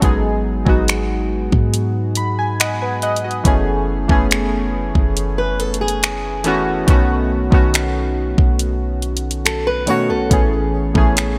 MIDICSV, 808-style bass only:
0, 0, Header, 1, 2, 480
1, 0, Start_track
1, 0, Tempo, 857143
1, 13, Time_signature, 4, 2, 24, 8
1, 6376, End_track
2, 0, Start_track
2, 0, Title_t, "808-style bass"
2, 0, Program_c, 0, 38
2, 13, Note_on_c, 0, 32, 108
2, 358, Note_off_c, 0, 32, 0
2, 372, Note_on_c, 0, 32, 109
2, 834, Note_off_c, 0, 32, 0
2, 854, Note_on_c, 0, 44, 100
2, 1911, Note_off_c, 0, 44, 0
2, 1932, Note_on_c, 0, 30, 112
2, 2278, Note_off_c, 0, 30, 0
2, 2293, Note_on_c, 0, 30, 102
2, 2754, Note_off_c, 0, 30, 0
2, 2774, Note_on_c, 0, 30, 101
2, 3831, Note_off_c, 0, 30, 0
2, 3852, Note_on_c, 0, 35, 105
2, 4198, Note_off_c, 0, 35, 0
2, 4212, Note_on_c, 0, 35, 106
2, 4673, Note_off_c, 0, 35, 0
2, 4693, Note_on_c, 0, 35, 101
2, 5532, Note_on_c, 0, 47, 92
2, 5541, Note_off_c, 0, 35, 0
2, 5654, Note_on_c, 0, 35, 97
2, 5663, Note_off_c, 0, 47, 0
2, 5768, Note_off_c, 0, 35, 0
2, 5773, Note_on_c, 0, 33, 109
2, 6119, Note_off_c, 0, 33, 0
2, 6133, Note_on_c, 0, 33, 107
2, 6376, Note_off_c, 0, 33, 0
2, 6376, End_track
0, 0, End_of_file